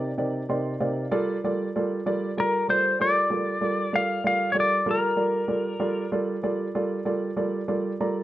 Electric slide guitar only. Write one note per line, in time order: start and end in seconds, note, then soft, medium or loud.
2.40 2.70 A#4 medium
2.70 3.01 C5 medium
3.01 3.97 D5 medium
3.96 4.26 F5 medium
4.27 4.51 F5 medium
4.52 4.58 C#5 medium
4.60 4.90 D5 medium
4.91 6.10 A#4 medium